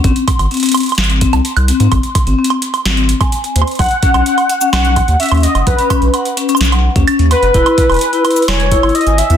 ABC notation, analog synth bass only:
X:1
M:4/4
L:1/16
Q:1/4=128
K:Abm
V:1 name="Analog synth bass" clef=bass
A,,, z2 A,,, z4 A,,,2 z =C,, z C,, z A,, | A,,, z2 A,,, z4 A,,,2 z4 E,, z | =B,,, z2 B,,, z4 B,,,2 z ^D,, z D,, z ^F,,, | =B,,, z2 B,,, z4 B,,,2 z ^D,, z D,, z ^F,,, |
=E,,, z2 E,,, z4 E,,,2 z ^G,,, z G,,, z =E,, |]